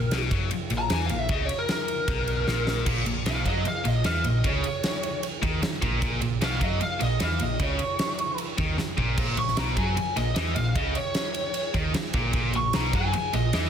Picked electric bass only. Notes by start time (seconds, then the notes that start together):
Already playing: A#1
0.11 B1
0.31 F#2
0.51 muted picked electric bass stroke
0.70 A#1
0.90 E2
1.10 A#1
1.29 C#2
2.08 B1
2.47 A#1
2.86 A#1
3.06 A#1
3.26 B1
3.45 F#2
3.66 muted picked electric bass stroke
3.85 A#1
4.05 E2
4.25 A#1
4.44 C#2
5.43 D#2
5.63 muted picked electric bass stroke
5.82 A#1
6.02 A#1
6.22 A#1
6.42 B1
6.61 F#2
6.82 muted picked electric bass stroke
7.01 A#1
7.21 E2
7.41 A#1
7.60 C#2
8.58 D#2
8.78 muted picked electric bass stroke
8.98 A#1
9.18 A#1
9.38 A#1
9.57 B1
9.77 F#2
9.98 muted picked electric bass stroke
10.17 A#1
10.36 E2
10.56 A#1
10.76 C#2
11.74 D#2
11.94 muted picked electric bass stroke
12.14 A#1
12.34 A#1
12.54 A#1
12.74 B1
12.93 F#2
13.14 muted picked electric bass stroke
13.33 A#1
13.53 E2